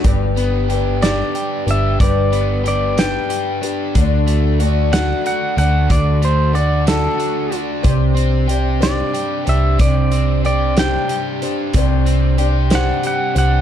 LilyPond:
<<
  \new Staff \with { instrumentName = "Pedal steel guitar" } { \time 6/8 \key g \major \tempo 4. = 62 r4. d''4 e''8 | d''4 d''8 g''4 r8 | r4. fis''8 fis''8 fis''8 | d''8 c''8 d''8 a'4 r8 |
r4. d''4 e''8 | d''4 d''8 g''4 r8 | r4. fis''8 fis''8 fis''8 | }
  \new Staff \with { instrumentName = "Twelve-string acoustic guitar" } { \time 6/8 \key g \major <g d' g' b'>4 <g d' g' b'>8 <g d' g' b'>4 <d' g' b'>8 | <g d' g' b'>4 <g d' g' b'>8 <g d' g' b'>4 <d' g' b'>8 | <d a d' fis' a'>4 <a d' fis' a'>8 <d a d' fis' a'>4 <d' fis' a'>8 | <d a d' fis' a'>4 <a d' fis' a'>8 <d a d' fis' a'>4 <d' fis' a'>8 |
<c' d' g' c''>4 <c' d' g' c''>8 <c' d' g' c''>4 <d' g' c''>8 | <c' d' g' c''>4 <c' d' g' c''>8 <c' d' g' c''>4 <d' g' c''>8 | <c' d' g' c''>4 <c' d' g' c''>8 <c' d' g' c''>4 <d' g' c''>8 | }
  \new Staff \with { instrumentName = "Overdriven electric guitar" } { \time 6/8 \key g \major g,8 b8 g'8 d'8 g'8 d'8 | g,8 b8 g'8 d'8 g'8 d'8 | d8 a8 fis'8 d'8 fis'8 d'8 | d8 a8 fis'8 d'8 fis'8 d'8 |
c8 c'8 g'8 d'8 g'8 d'8 | c8 c'8 g'8 d'8 g'8 d'8 | c8 c'8 g'8 d'8 g'8 d'8 | }
  \new Staff \with { instrumentName = "Picked electric bass" } { \clef bass \time 6/8 \key g \major g,,2 r8 g,,8 | g,,2 r4 | d,2 r8 d,8 | d,2 r4 |
c,2 r8 c,8 | c,2 r4 | c,2 r8 c,8 | }
  \new DrumStaff \with { instrumentName = "Drums" } \drummode { \time 6/8 <hh bd>8 hh8 hh8 <hh sn>8 hh8 hh8 | <hh bd>8 hh8 hh8 <hh sn>8 hh8 hh8 | <hh bd>8 hh8 hh8 <hh sn>8 hh8 hh8 | <hh bd>8 hh8 hh8 <hh sn>8 hh8 hh8 |
<hh bd>8 hh8 hh8 <hh sn>8 hh8 hh8 | <hh bd>8 hh8 hh8 <hh sn>8 hh8 hh8 | <hh bd>8 hh8 hh8 <hh sn>8 hh8 hh8 | }
>>